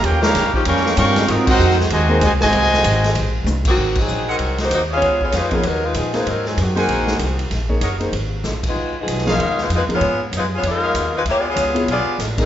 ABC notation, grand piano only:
X:1
M:4/4
L:1/8
Q:"Swing" 1/4=193
K:Ab
V:1 name="Grand piano"
z6 [G,CFB]2 | [CFBd] z4 [B,EAc] z2 | z8 | [K:Db] z8 |
z3 [F,B,EA] z3 [B,EAc] | z3 [B,EAc]3 z2 | z [B,EAd] z [B,EAc] z4 | z3 [F,B,EA] z3 [F,B,EA] |
z8 | z3 [=B,_F=FA] z3 [_B,EAB] |]